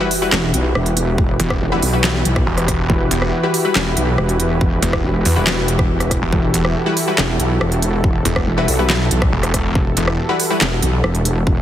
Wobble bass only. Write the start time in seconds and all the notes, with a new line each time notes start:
0.32 E1
0.54 B1
0.75 E1
1.18 E1
1.61 E1
1.82 B1
2.25 B1
2.90 E1
3.75 E1
3.97 B1
4.18 E1
4.61 E1
5.04 E1
5.36 E1
6.32 E1
7.18 E1
7.40 B1
7.61 E1
8.04 E1
8.47 E1
8.68 B1
9.11 B1
9.75 E1
10.61 E1
10.82 B1
11.04 E1
11.47 E1